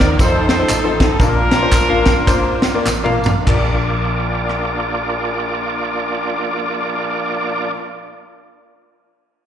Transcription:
Already playing: tonewheel organ F3 A#3 C4 D#4 A#4, horn section D#4 A#4 D5
0.00 fingered electric bass D#2, kick, snare, tambourine
0.19 fingered electric bass F2, tonewheel organ F3 A3 C4 D#4 A4, grand piano C4 D#4 F4 A4 C5, horn section D#4 A4 C5, kick, ride, tambourine
0.49 horn section D#4 A4 C5, snare, ride, tambourine
0.59 grand piano C4 D#4 F4 A4 C5
0.69 fingered electric bass A1, clap, ride, tambourine
0.84 grand piano C4 D#4 F4 A4 C5
1.00 kick, snare, ride, tambourine
1.19 fingered electric bass A#1, grand piano A#2 A#3 D4 F4 A#4 D5, tonewheel organ A#3 D4 F4, horn section D4 F4 A#4, kick, ride, tambourine
1.51 snare, ride, tambourine
1.62 grand piano A#3 D4 F4 A#4 C5
1.72 fingered electric bass A1, kick, clap, ride, tambourine
1.89 grand piano A#3 D4 F4 A#4 F5
2.05 kick, snare, ride, tambourine
2.27 fingered electric bass G1, grand piano A#3 D4 F4 A#4 C5, kick, clap, ride, tambourine
2.62 snare, ride, tambourine
2.74 grand piano A#3 D4 F4 A#4 D5
2.86 fingered electric bass A1, snare, clap, tambourine
3.03 grand piano A#3 D4 F4 A#4 F5, mid tom
3.24 floor tom, tambourine
3.45 grand piano A#1 D4 F4 A#4, fingered electric bass A#1, tonewheel organ A#3 D4 F4 D5, kick, clap, crash
3.49 grand piano D5
4.49 cross-stick

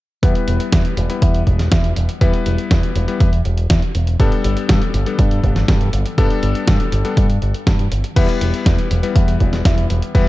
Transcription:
0.23 picked electric bass E2, electric grand piano G3 B3 E4 B4, kick, closed hi-hat
0.35 closed hi-hat
0.48 picked electric bass E1, closed hi-hat
0.60 closed hi-hat
0.72 picked electric bass E2, kick, snare, closed hi-hat
0.85 closed hi-hat
0.97 picked electric bass E1, closed hi-hat
1.10 electric grand piano G3 B3 E4 B4, closed hi-hat
1.22 picked electric bass E2, kick, closed hi-hat
1.34 closed hi-hat
1.47 picked electric bass E1, kick, closed hi-hat
1.59 snare, closed hi-hat
1.72 picked electric bass E2, kick, snare, closed hi-hat
1.84 closed hi-hat
1.96 picked electric bass E1, closed hi-hat
2.09 closed hi-hat
2.21 picked electric bass E2, electric grand piano G3 B3 E4 B4, kick, closed hi-hat
2.34 closed hi-hat
2.46 picked electric bass E1, closed hi-hat
2.58 closed hi-hat
2.71 picked electric bass E2, kick, snare, closed hi-hat
2.83 closed hi-hat
2.96 picked electric bass E1, closed hi-hat
3.08 electric grand piano G3 B3 E4 B4, closed hi-hat
3.20 picked electric bass E2, kick, closed hi-hat
3.33 closed hi-hat
3.45 picked electric bass E1, closed hi-hat
3.57 closed hi-hat
3.70 picked electric bass E2, kick, snare, closed hi-hat
3.82 closed hi-hat
3.95 picked electric bass E1, closed hi-hat
4.07 closed hi-hat
4.20 picked electric bass G2, electric grand piano G3 B3 D4 A4, kick, closed hi-hat
4.32 closed hi-hat
4.44 picked electric bass G1, closed hi-hat
4.57 closed hi-hat
4.69 picked electric bass G2, kick, snare, closed hi-hat
4.82 closed hi-hat
4.94 picked electric bass G1, closed hi-hat
5.06 electric grand piano G3 B3 D4 A4, closed hi-hat
5.19 picked electric bass G2, kick, closed hi-hat
5.31 closed hi-hat
5.44 picked electric bass G1, kick, closed hi-hat
5.56 snare, closed hi-hat
5.68 picked electric bass G2, kick, snare, closed hi-hat
5.81 closed hi-hat
5.93 picked electric bass G1, closed hi-hat
6.06 closed hi-hat
6.18 picked electric bass G2, electric grand piano G3 B3 D4 A4, kick, closed hi-hat
6.30 closed hi-hat
6.43 picked electric bass G1, closed hi-hat
6.55 closed hi-hat
6.68 picked electric bass G2, kick, snare, closed hi-hat
6.80 closed hi-hat
6.92 picked electric bass G1, closed hi-hat
7.05 electric grand piano G3 B3 D4 A4, closed hi-hat
7.17 picked electric bass G2, kick, closed hi-hat
7.30 closed hi-hat
7.42 picked electric bass G1, closed hi-hat
7.54 closed hi-hat
7.67 picked electric bass G2, kick, snare, closed hi-hat
7.79 closed hi-hat
7.92 picked electric bass G1, closed hi-hat
8.04 closed hi-hat
8.16 picked electric bass E2, electric grand piano G3 B3 E4 B4, kick, closed hi-hat, crash
8.29 closed hi-hat
8.41 picked electric bass E1, closed hi-hat
8.54 closed hi-hat
8.66 picked electric bass E2, kick, snare, closed hi-hat
8.79 closed hi-hat
8.91 picked electric bass E1, closed hi-hat
9.03 electric grand piano G3 B3 E4 B4, closed hi-hat
9.16 picked electric bass E2, kick, closed hi-hat
9.28 closed hi-hat
9.40 picked electric bass E1, kick, closed hi-hat
9.53 snare, closed hi-hat
9.65 picked electric bass E2, kick, snare, closed hi-hat
9.78 closed hi-hat
9.90 picked electric bass E1, closed hi-hat
10.02 closed hi-hat
10.15 picked electric bass E2, electric grand piano G3 B3 E4 B4, kick, closed hi-hat

